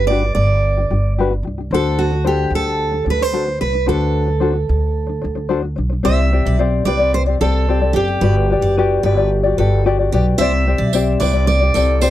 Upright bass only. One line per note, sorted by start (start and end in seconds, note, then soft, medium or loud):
0.00 0.32 G1 medium
0.36 0.86 G1 medium
0.90 1.40 G1 medium
1.43 1.68 C2 medium
1.71 2.48 D2 medium
2.50 3.02 D2 medium
3.06 3.57 D2 medium
3.62 3.86 C2 medium
3.88 4.65 D2 medium
4.69 5.20 D2 medium
5.24 5.74 D2 medium
5.78 6.03 B1 medium
6.05 6.42 C2 loud
6.45 6.83 B1 medium
6.85 7.36 C2 medium
7.41 7.91 C2 medium
7.94 8.19 F#1 medium
8.21 8.59 G1 medium
8.61 8.99 F#1 medium
9.03 9.54 G1 medium
9.58 10.08 G1 medium
10.12 10.37 B1 medium
10.38 10.76 C2 loud
10.79 11.17 B1 medium
11.21 11.71 C2 loud
11.75 12.10 C2 medium